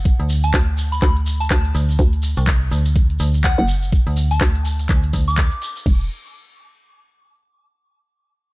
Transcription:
0.00 0.17 F#1 loud
0.05 kick loud
0.05 closed hi-hat medium
0.05 shekere soft
0.20 0.52 D2 loud
0.20 closed hi-hat soft
0.30 open hi-hat loud
0.30 shekere medium
0.44 0.60 A5 medium
0.44 closed hi-hat medium
0.44 shekere soft
0.53 1.01 D2 medium
0.53 kick loud
0.53 clap loud
0.53 closed hi-hat medium
0.53 shekere soft
0.78 open hi-hat loud
0.78 shekere medium
0.92 0.99 B5 medium
0.92 closed hi-hat medium
0.92 shekere soft
1.02 1.49 D2 loud
1.02 1.11 B5 medium
1.02 kick loud
1.02 clap medium
1.02 closed hi-hat medium
1.02 shekere soft
1.16 closed hi-hat soft
1.26 open hi-hat loud
1.26 shekere medium
1.40 1.47 A5 medium
1.40 closed hi-hat soft
1.40 shekere medium
1.50 1.73 D2 loud
1.50 1.60 A5 medium
1.50 kick loud
1.50 clap loud
1.50 closed hi-hat medium
1.65 closed hi-hat soft
1.75 1.97 D2 loud
1.75 open hi-hat loud
1.75 shekere medium
1.89 closed hi-hat soft
1.89 shekere soft
1.99 2.35 D2 loud
1.99 kick loud
1.99 closed hi-hat medium
1.99 shekere soft
2.13 closed hi-hat soft
2.23 open hi-hat loud
2.23 shekere medium
2.37 2.70 C2 loud
2.37 closed hi-hat medium
2.37 shekere soft
2.47 kick loud
2.47 clap loud
2.47 closed hi-hat medium
2.47 shekere soft
2.71 3.18 D2 loud
2.71 open hi-hat loud
2.71 shekere medium
2.85 closed hi-hat medium
2.85 shekere soft
2.95 kick loud
2.95 closed hi-hat medium
2.95 shekere soft
3.10 closed hi-hat soft
3.20 3.56 D2 loud
3.20 open hi-hat loud
3.20 shekere medium
3.34 closed hi-hat soft
3.34 shekere medium
3.44 3.53 F#5 medium
3.44 kick loud
3.44 clap loud
3.44 closed hi-hat medium
3.44 shekere soft
3.58 4.04 F#1 loud
3.58 3.65 F#5 medium
3.58 closed hi-hat soft
3.68 open hi-hat loud
3.68 shekere medium
3.82 closed hi-hat soft
3.82 shekere soft
3.92 kick loud
3.92 closed hi-hat medium
3.92 shekere soft
4.07 4.39 D2 loud
4.07 open hi-hat medium
4.17 open hi-hat loud
4.17 shekere loud
4.31 4.48 A5 medium
4.31 closed hi-hat medium
4.31 shekere medium
4.41 4.88 D2 loud
4.41 kick loud
4.41 clap loud
4.41 closed hi-hat medium
4.55 closed hi-hat soft
4.65 open hi-hat loud
4.65 shekere medium
4.79 closed hi-hat medium
4.79 shekere medium
4.89 5.12 D2 loud
4.89 kick loud
4.89 clap medium
4.89 closed hi-hat medium
4.89 shekere soft
5.03 closed hi-hat soft
5.13 5.50 D2 loud
5.13 kick medium
5.13 open hi-hat loud
5.13 shekere loud
5.28 5.76 D6 medium
5.28 closed hi-hat soft
5.28 shekere soft
5.37 kick loud
5.37 clap loud
5.37 closed hi-hat medium
5.37 shekere soft
5.52 closed hi-hat soft
5.62 open hi-hat loud
5.62 shekere medium
5.76 closed hi-hat soft
5.76 shekere medium
5.86 6.08 E1 loud
5.86 kick loud
5.86 crash medium

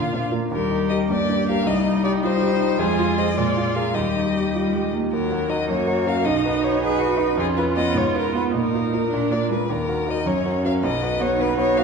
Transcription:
0.00 0.50 A#2 soft
0.00 0.21 F4 soft
0.00 0.30 F5 medium
0.13 0.22 C3 soft
0.13 0.44 D4 soft
0.31 0.41 A#2 soft
0.31 0.49 F4 soft
0.31 0.50 A#4 soft
0.51 1.07 D#2 soft
0.51 1.10 G3 soft
0.51 1.05 G4 soft
0.51 0.88 A#4 soft
0.71 1.02 D#4 soft
0.89 1.08 G4 soft
0.89 1.08 A#4 soft
0.89 0.97 D#5 soft
1.09 1.65 G2 soft
1.09 1.68 A#3 soft
1.09 1.68 G4 soft
1.09 1.47 D5 medium
1.29 1.59 D4 soft
1.49 1.66 G4 soft
1.49 1.66 A#4 soft
1.49 1.68 F5 medium
1.66 2.77 C2 soft
1.66 2.22 G3 soft
1.66 2.79 D#4 medium
1.66 2.04 D#5 medium
1.85 2.15 D#4 soft
2.04 2.34 G4 soft
2.04 2.12 D5 medium
2.22 2.78 G3 soft
2.22 2.42 F4 soft
2.22 2.81 C5 medium
2.42 2.72 G4 soft
2.60 2.79 D#4 soft
2.79 3.35 F2 soft
2.79 3.33 G#3 medium
2.79 3.36 F4 medium
2.79 3.19 G#4 medium
2.99 3.30 F4 soft
3.18 3.35 G#4 soft
3.18 3.35 C5 soft
3.18 3.39 D#5 medium
3.36 3.93 A#2 soft
3.36 3.95 G#3 soft
3.36 3.94 F4 soft
3.36 3.76 D5 medium
3.57 3.87 F4 soft
3.75 3.93 G#4 soft
3.75 3.93 A#4 soft
3.75 3.96 F5 soft
3.94 5.08 D#2 soft
3.94 4.49 G3 soft
3.94 4.81 G4 soft
3.94 4.92 D#5 soft
4.16 4.46 D#4 soft
4.35 4.66 G4 soft
4.53 4.74 G3 soft
4.53 4.74 F4 soft
4.72 4.94 G#3 soft
4.72 5.04 G4 soft
4.93 5.12 A#3 soft
4.93 5.12 D#4 soft
5.12 5.31 D#2 soft
5.12 5.70 F#3 soft
5.12 5.51 A#4 soft
5.32 5.48 F#4 soft
5.32 5.49 A#4 soft
5.49 5.67 D#4 soft
5.49 5.67 F#4 soft
5.49 5.67 A#4 soft
5.49 5.69 D#5 soft
5.68 5.87 F#2 soft
5.68 6.27 A#3 soft
5.68 6.28 F#4 soft
5.68 6.09 C#5 soft
5.87 6.05 F#4 soft
5.87 6.05 A#4 soft
6.06 6.24 C#4 soft
6.06 6.23 F#4 soft
6.06 6.24 A#4 soft
6.06 6.26 F5 medium
6.25 6.44 B1 soft
6.25 7.39 D#4 soft
6.25 6.80 D#4 soft
6.25 6.65 D#5 medium
6.44 6.61 F#4 soft
6.44 6.62 B4 soft
6.64 6.80 D#4 soft
6.64 6.81 F#4 soft
6.64 6.81 B4 soft
6.64 6.82 C#5 medium
6.80 6.99 D#4 soft
6.80 6.98 F#4 soft
6.80 7.00 G#4 medium
6.80 6.99 B4 soft
6.85 7.38 B4 medium
6.99 7.20 F#4 soft
6.99 7.16 F#4 soft
6.99 7.16 B4 soft
7.17 7.35 D#4 soft
7.17 7.35 F#4 soft
7.17 7.35 B4 soft
7.36 7.56 F2 soft
7.36 7.95 C#4 medium
7.36 8.53 F4 medium
7.36 7.46 G#4 medium
7.57 7.74 F4 soft
7.57 7.64 B4 medium
7.57 7.75 B4 soft
7.76 7.93 B3 soft
7.76 7.94 F4 soft
7.76 7.94 B4 soft
7.76 7.99 D#5 medium
7.94 8.13 G#2 soft
7.94 8.53 B3 soft
7.94 8.15 C#5 soft
8.15 8.32 F4 soft
8.15 8.35 A#4 soft
8.15 8.32 B4 soft
8.34 8.51 B3 soft
8.34 8.52 F4 soft
8.34 8.52 B4 soft
8.34 8.43 B4 soft
8.51 8.72 A#2 soft
8.51 9.06 A#3 soft
8.51 9.08 D#4 soft
8.56 9.33 A#4 soft
8.74 8.91 F4 soft
8.74 8.91 A#4 soft
8.93 9.10 D#4 soft
8.93 9.10 F4 soft
8.93 9.10 A#4 soft
9.09 9.48 D4 soft
9.09 9.31 D4 soft
9.14 9.31 A#2 soft
9.30 9.48 A#3 soft
9.30 9.48 F4 soft
9.30 9.49 A#4 soft
9.30 9.50 D5 soft
9.49 9.68 G#3 soft
9.49 9.68 D4 soft
9.49 9.68 F4 soft
9.49 9.68 A#4 soft
9.49 9.72 B4 soft
9.70 9.88 D#2 soft
9.70 10.12 A#4 medium
9.89 10.06 F#4 soft
9.89 10.06 A#4 soft
10.06 10.25 D#4 soft
10.06 10.21 F#4 soft
10.06 10.25 F#4 soft
10.06 10.25 A#4 soft
10.10 10.28 D#5 medium
10.25 10.45 F#2 soft
10.25 10.84 C#4 soft
10.25 10.65 C#5 medium
10.45 10.62 F#4 soft
10.45 10.63 A#4 soft
10.63 10.82 C#4 soft
10.63 10.78 F#4 soft
10.63 10.82 F#4 soft
10.63 10.83 A#4 soft
10.63 10.73 F5 medium
10.83 11.02 B1 soft
10.83 11.38 B3 soft
10.83 11.23 D#5 medium
11.03 11.20 F#4 soft
11.03 11.20 B4 soft
11.20 11.37 B3 soft
11.20 11.35 F#4 soft
11.20 11.38 F#4 soft
11.20 11.39 B4 soft
11.20 11.42 C#5 medium
11.39 11.57 B3 soft
11.39 11.84 D#4 medium
11.39 11.57 F#4 soft
11.39 11.57 B4 soft
11.39 11.57 B4 medium
11.58 11.75 F#4 soft
11.58 11.76 B4 soft
11.58 11.79 C#5 medium
11.77 11.84 B3 soft
11.77 11.84 F#4 soft
11.77 11.84 B4 soft
11.77 11.84 F5 medium

